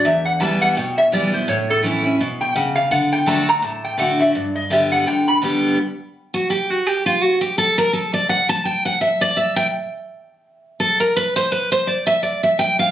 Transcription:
0.05 0.74 E2 medium
0.05 0.25 E5 medium
0.25 0.41 F#5 loud
0.40 0.75 E3 medium
0.40 0.75 G3 loud
0.40 0.76 B3 loud
0.40 0.76 E4 loud
0.40 0.60 A5 loud
0.61 0.78 F#5 loud
0.77 1.46 B2 medium
0.77 0.97 G5 loud
0.98 1.13 E5 loud
1.12 1.32 E3 loud
1.12 1.32 G3 loud
1.12 1.32 B3 loud
1.12 1.30 E4 loud
1.12 1.33 D5 medium
1.31 1.49 B3 medium
1.31 1.47 E4 medium
1.31 1.48 C5 loud
1.48 2.17 A2 loud
1.48 1.68 C#5 loud
1.70 1.79 A4 loud
1.83 2.03 E3 medium
1.83 2.03 A3 medium
1.83 2.04 C#4 loud
1.83 2.03 E4 loud
2.04 2.20 C#4 medium
2.04 2.19 E4 medium
2.20 2.55 B2 medium
2.41 2.55 G5 loud
2.55 2.90 C#3 medium
2.55 2.75 F#5 medium
2.76 2.91 F5 loud
2.91 3.25 D3 medium
2.91 3.11 F#5 medium
3.13 3.28 G5 loud
3.26 3.61 D3 medium
3.26 3.62 A3 medium
3.26 3.62 D4 loud
3.26 3.62 F#4 loud
3.26 3.47 A5 medium
3.49 3.64 A#5 loud
3.62 4.31 A2 loud
3.62 3.83 A5 loud
3.84 3.99 G5 loud
3.97 4.33 D3 medium
3.97 4.33 A3 loud
3.97 4.33 D4 loud
3.97 4.34 F#4 loud
3.97 4.19 F#5 medium
4.20 4.35 E5 loud
4.35 5.04 G2 medium
4.35 4.54 D5 medium
4.55 4.71 D#5 loud
4.70 5.05 D3 medium
4.70 5.05 G3 loud
4.70 5.06 B3 loud
4.70 5.06 G4 loud
4.70 4.91 E5 medium
4.92 5.07 F#5 loud
5.07 5.40 D3 medium
5.07 5.26 G5 loud
5.28 5.37 B5 loud
5.42 5.76 D3 medium
5.42 5.77 G3 loud
5.42 5.77 B3 loud
5.42 5.78 G4 loud
6.34 6.50 F#4 medium
6.50 6.70 G4 medium
6.70 6.87 F#4 medium
6.87 7.06 G4 medium
7.06 7.22 F4 medium
7.22 7.41 F#4 medium
7.41 7.57 G4 medium
7.58 7.77 A4 medium
7.78 7.93 A#4 loud
7.93 8.13 A4 medium
8.13 8.29 D5 loud
8.29 8.49 F#5 medium
8.49 8.65 A5 loud
8.65 8.85 G5 medium
8.85 9.01 F#5 loud
9.01 9.21 E5 medium
9.21 9.37 D5 loud
9.37 9.56 E5 medium
9.56 9.66 G5 loud
10.80 11.00 A4 medium
11.00 11.16 A#4 medium
11.16 11.36 B4 medium
11.36 11.51 C5 loud
11.52 11.71 B4 medium
11.72 11.88 C5 loud
11.87 12.06 D5 medium
12.07 12.22 E5 loud
12.23 12.43 D5 medium
12.43 12.58 E5 loud
12.59 12.79 G5 loud
12.79 12.91 F5 loud

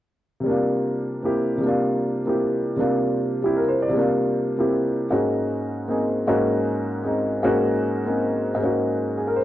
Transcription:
0.40 1.56 C3 soft
0.40 1.59 G3 soft
0.46 1.22 A#3 soft
0.46 1.63 D4 soft
0.51 1.64 F4 medium
1.23 1.62 A#3 soft
1.23 1.62 C4 soft
1.23 1.63 E4 soft
1.23 1.63 G4 soft
1.58 2.75 C3 soft
1.58 2.76 G3 soft
1.63 2.24 A#3 soft
1.63 2.79 D4 soft
1.69 2.80 F4 medium
2.26 2.77 A#3 soft
2.26 2.78 C4 soft
2.26 2.79 E4 soft
2.26 2.79 G4 soft
2.76 3.88 C3 medium
2.76 3.41 G3 soft
2.76 3.94 A#3 soft
2.76 3.95 D4 soft
2.81 3.96 F4 medium
3.42 3.91 G3 soft
3.42 3.95 C4 soft
3.42 3.96 E4 soft
3.42 3.63 G4 soft
3.56 3.80 A#4 soft
3.68 3.88 C5 soft
3.82 4.02 D5 soft
3.89 5.08 C3 medium
3.89 5.09 G3 soft
3.95 4.56 A#3 soft
3.95 5.12 D4 soft
4.01 5.14 F4 medium
4.57 5.10 A#3 soft
4.57 5.11 C4 soft
4.57 5.11 E4 soft
4.57 5.11 G4 soft
5.11 6.26 G#2 soft
5.11 6.26 G#3 soft
5.11 5.86 A#3 soft
5.11 6.26 C#4 soft
5.11 6.27 F#4 soft
5.88 6.26 A#3 soft
5.88 6.27 C4 soft
5.88 6.27 D#4 soft
5.88 6.28 G#4 soft
6.27 7.41 G#2 medium
6.27 7.02 G#3 soft
6.27 7.42 A#3 soft
6.27 7.42 C#4 soft
6.27 7.43 F#4 medium
7.04 7.42 G#3 soft
7.04 7.43 C4 soft
7.04 7.44 D#4 soft
7.43 8.53 G#2 medium
7.43 8.56 G#3 soft
7.43 8.04 A#3 soft
7.43 8.59 C#4 medium
7.43 8.60 F#4 medium
8.05 8.58 A#3 soft
8.05 8.58 C4 soft
8.05 8.59 D#4 soft
8.05 8.59 G#4 soft
8.55 9.44 G#2 soft
8.55 9.44 G#3 soft
8.60 9.44 A#3 soft
8.60 9.44 C#4 soft
8.65 9.44 F#4 soft
9.18 9.29 G#4 soft
9.27 9.40 A#4 soft
9.36 9.44 C5 soft

